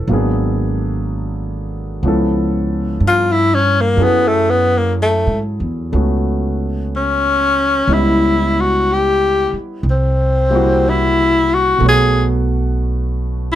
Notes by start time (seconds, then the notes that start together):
Already playing: G#4 A4 B4 C#5
0.07 G#1 F#3 A#3 B3
0.12 D4 G#4
2.03 C#2 F3 B3 C#4 E4
2.08 A4
3.00 G2
3.08 F4
3.32 E4
3.55 C#4
3.81 A#3
3.96 F#2 F#3 C#4 E4 A4
4.01 B3 G#4
4.28 A3
4.50 B3
4.78 A#3
5.02 A3
5.27 G#2
5.60 E2
5.92 C#2 A3 B3 C#4 F#4
6.96 C#4
7.88 C#2 G3 B3 C#4 E4 D#5
7.93 E4
8.61 F#4
8.93 G4
9.53 muted upright bass stroke
9.83 C2
9.90 C4
10.50 G3 A#3 C4 E4
10.55 F#4
10.89 E4
11.55 F#4
11.78 B1 B2 A3
11.83 B3 C#5
11.88 F#4 G#4